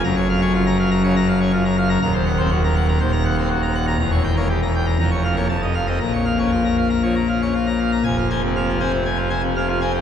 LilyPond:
<<
  \new Staff \with { instrumentName = "Pipe organ" } { \time 4/4 \key bes \minor \tempo 4 = 120 bes''16 des''16 f''16 des''16 f'16 bes''16 f''16 bes''16 des''16 bes''16 f''16 des''16 f'16 bes''16 f''16 bes''16 | bes''16 c''16 ges''16 c''16 ges'16 bes''16 ges''16 bes''16 c''16 bes''16 ges''16 c''16 ges'16 bes''16 ges''16 bes''16 | bes''16 cis''16 g''16 cis''16 g'16 bes''16 g''16 bes''16 bes''16 des''16 f''16 des''16 a''16 ees''16 f''16 ees''16 | bes''16 des''16 f''16 des''16 f'16 bes''16 f''16 bes''16 des''16 bes''16 f''16 des''16 f'16 bes''16 f''16 bes''16 |
\key f \minor aes''16 f'16 <c'' aes''>16 c16 f''16 f'16 <c'' aes''>16 c16 aes''16 f'16 <c'' aes''>16 c16 f''16 f'16 <c'' aes''>16 c16 | }
  \new Staff \with { instrumentName = "Pipe organ" } { \clef bass \time 4/4 \key bes \minor << { ges,8. des'16 r4 des16 r8 des'16 r4 | ees,8. c'16 r4 ees,8. c'16 r4 | e,8. bes16 r4 f,8. bes16 f,8. c'16 | bes,8. des'16 r4 f16 r8 des'16 r4 |
\key f \minor f,4 c8 c'8 c8 r8 c8 c'8 | } \\ { ges,,1 | ees,,2 ees,,2 | e,,2 f,,4 f,,4 | bes,,1 |
f,,1 | } >> }
>>